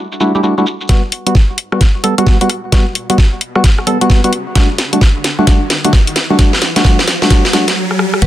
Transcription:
0.12 shaker soft
0.20 0.33 G3 medium
0.20 0.33 A3 medium
0.20 0.33 D4 medium
0.20 0.33 E4 medium
0.20 0.33 F#4 medium
0.20 shaker medium
0.35 0.41 G3 medium
0.35 0.41 A3 medium
0.35 0.41 D4 medium
0.35 0.41 E4 medium
0.35 0.41 G4 medium
0.35 shaker soft
0.43 0.54 G3 medium
0.43 0.54 A3 medium
0.43 0.54 D4 medium
0.43 0.54 E4 medium
0.43 0.54 F#4 medium
0.43 shaker soft
0.58 0.65 G3 medium
0.58 0.65 A3 medium
0.58 0.65 D4 medium
0.58 0.65 E4 medium
0.58 0.65 F#4 loud
0.58 shaker soft
0.66 shaker medium
0.81 shaker soft
0.89 1.02 G3 medium
0.89 1.02 B3 medium
0.89 1.02 F#4 medium
0.89 kick loud
0.89 snare soft
0.89 closed hi-hat medium
0.89 riser medium
1.12 open hi-hat loud
1.26 1.34 G3 medium
1.26 1.34 B3 medium
1.26 1.34 F#4 medium
1.26 closed hi-hat medium
1.35 kick loud
1.35 snare soft
1.58 open hi-hat loud
1.72 1.80 G3 medium
1.72 1.80 B3 medium
1.72 1.80 F#4 loud
1.72 cross-stick medium
1.81 kick medium
1.81 snare medium
1.81 closed hi-hat medium
2.04 2.15 G3 medium
2.04 2.15 B3 medium
2.04 2.15 A4 loud
2.04 open hi-hat loud
2.18 2.38 G3 loud
2.18 2.38 B3 medium
2.18 2.38 F#4 loud
2.18 cross-stick medium
2.18 closed hi-hat medium
2.27 kick loud
2.27 snare medium
2.41 2.49 G3 loud
2.41 2.49 B3 loud
2.41 2.49 F#4 loud
2.41 closed hi-hat medium
2.50 cross-stick soft
2.50 open hi-hat loud
2.72 2.85 G3 medium
2.72 2.85 B3 medium
2.72 2.85 F#4 medium
2.72 kick medium
2.72 snare medium
2.72 closed hi-hat medium
2.95 open hi-hat loud
3.10 3.17 G3 medium
3.10 3.17 B3 medium
3.10 3.17 F#4 loud
3.10 closed hi-hat medium
3.18 kick medium
3.18 snare medium
3.41 open hi-hat loud
3.56 3.63 G3 medium
3.56 3.63 B3 medium
3.56 3.63 F#4 loud
3.56 cross-stick medium
3.64 kick medium
3.64 snare medium
3.64 closed hi-hat medium
3.78 cross-stick medium
3.87 3.98 G3 medium
3.87 3.98 B3 medium
3.87 3.98 A4 loud
3.87 open hi-hat loud
4.01 4.21 G3 loud
4.01 4.21 B3 loud
4.01 4.21 F#4 loud
4.01 closed hi-hat medium
4.10 kick loud
4.10 snare medium
4.24 4.32 G3 loud
4.24 4.32 B3 medium
4.24 4.32 F#4 loud
4.24 closed hi-hat soft
4.33 open hi-hat loud
4.55 4.69 G3 medium
4.55 4.69 A3 medium
4.55 4.69 D4 medium
4.55 4.69 F#4 medium
4.55 kick loud
4.55 snare medium
4.55 closed hi-hat medium
4.78 snare medium
4.78 open hi-hat loud
4.93 5.00 G3 medium
4.93 5.00 A3 medium
4.93 5.00 D4 medium
4.93 5.00 F#4 medium
4.93 closed hi-hat medium
5.01 kick loud
5.01 snare medium
5.24 snare medium
5.24 open hi-hat loud
5.39 5.46 G3 medium
5.39 5.46 A3 medium
5.39 5.46 D4 medium
5.39 5.46 F#4 loud
5.47 5.60 G3 medium
5.47 5.60 D4 medium
5.47 kick loud
5.47 snare medium
5.47 closed hi-hat medium
5.70 snare medium
5.70 open hi-hat loud
5.85 5.92 G3 medium
5.85 5.92 A3 medium
5.85 5.92 D4 medium
5.85 5.92 F#4 loud
5.85 closed hi-hat medium
5.93 kick loud
5.93 snare medium
6.07 closed hi-hat soft
6.16 snare medium
6.16 open hi-hat loud
6.30 6.37 G3 medium
6.30 6.37 A3 medium
6.30 6.37 D4 medium
6.30 6.37 F#4 loud
6.39 6.52 A3 medium
6.39 kick loud
6.39 snare medium
6.39 closed hi-hat medium
6.53 snare medium
6.62 snare loud
6.62 open hi-hat loud
6.76 6.83 G3 medium
6.76 6.83 A3 medium
6.76 6.83 D4 medium
6.76 6.83 F#4 loud
6.76 snare medium
6.76 closed hi-hat medium
6.85 6.98 G3 medium
6.85 6.98 A3 medium
6.85 6.98 D4 medium
6.85 6.98 F#4 medium
6.85 kick medium
6.85 snare loud
6.99 snare medium
7.08 snare loud
7.08 open hi-hat loud
7.22 7.29 G3 medium
7.22 7.29 A3 medium
7.22 7.29 D4 medium
7.22 7.29 F#4 loud
7.22 snare medium
7.30 7.43 G3 medium
7.30 7.43 A3 medium
7.30 7.43 F#4 medium
7.30 kick medium
7.30 snare loud
7.30 closed hi-hat medium
7.45 snare medium
7.53 7.66 G3 medium
7.53 7.66 A3 medium
7.53 7.66 D4 medium
7.53 7.66 F#4 medium
7.53 snare loud
7.53 open hi-hat loud
7.68 snare medium
7.68 closed hi-hat medium
7.91 cross-stick medium
7.99 cross-stick medium
8.14 cross-stick medium
8.22 8.27 G1 loud
8.22 8.27 G3 medium
8.22 8.27 B3 medium
8.22 8.27 F#4 medium
8.22 8.27 B4 loud
8.22 kick loud
8.22 closed hi-hat medium
8.22 crash loud

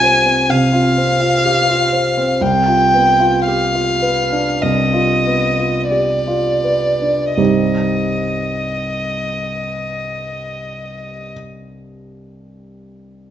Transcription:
0.00 0.46 C2 soft
0.00 0.26 C4 soft
0.00 0.73 F4 soft
0.00 1.45 G4 soft
0.00 0.40 C5 soft
0.00 0.52 G#5 medium
0.26 0.63 C4 soft
0.49 0.87 C3 soft
0.49 2.44 F5 medium
0.73 1.10 F4 soft
0.98 1.35 C4 soft
1.21 1.58 F4 soft
1.45 1.68 G4 soft
1.69 2.07 F4 soft
1.93 2.31 C5 soft
2.17 2.41 C4 soft
2.41 4.59 C2 soft
2.41 3.46 G5 medium
2.67 3.09 F4 soft
2.94 3.36 B3 soft
3.20 3.63 F4 soft
3.47 3.75 G4 soft
3.47 4.63 F5 medium
3.75 4.21 F4 soft
4.02 4.50 B4 soft
4.32 4.81 D4 soft
4.62 7.34 C2 soft
4.62 5.89 D#5 medium
4.93 5.45 F4 soft
5.27 5.79 B3 soft
5.58 6.13 F4 soft
5.90 6.27 G4 soft
5.90 7.34 D5 soft
6.28 6.88 F4 soft
6.64 7.23 B4 soft
7.02 7.37 D4 soft
7.34 11.31 C2 soft
7.34 11.31 G2 soft
7.34 11.32 G3 soft
7.34 11.32 C4 soft
7.34 11.32 G4 soft
7.34 11.28 D#5 soft
7.38 11.33 D#4 soft

